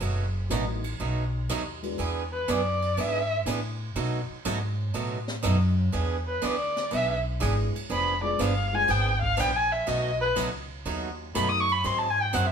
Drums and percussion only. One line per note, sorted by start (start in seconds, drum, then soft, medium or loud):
0.02 ride medium
0.50 hi-hat pedal medium
0.50 ride medium
0.84 ride medium
1.50 hi-hat pedal medium
1.50 ride medium
1.83 ride soft
1.99 ride medium
2.49 hi-hat pedal medium
2.49 ride medium
2.82 ride soft
2.98 ride medium
3.47 hi-hat pedal medium
3.47 ride medium
3.96 ride medium
4.45 hi-hat pedal medium
4.45 ride medium
4.95 ride medium
5.28 snare soft
5.43 hi-hat pedal medium
5.43 ride medium
5.93 ride medium
6.43 hi-hat pedal medium
6.43 ride medium
6.77 snare soft
6.77 ride soft
6.93 ride medium
7.42 hi-hat pedal medium
7.42 ride medium
7.76 ride medium
7.91 ride medium
8.40 hi-hat pedal medium
8.40 ride medium
8.90 snare soft
8.90 ride medium
9.23 kick medium
9.39 hi-hat pedal medium
9.39 ride medium
9.88 ride medium
10.37 hi-hat pedal medium
10.37 ride medium
10.87 ride medium
11.36 hi-hat pedal medium
11.36 ride medium
11.69 ride medium
11.85 ride medium
12.34 hi-hat pedal medium
12.34 ride medium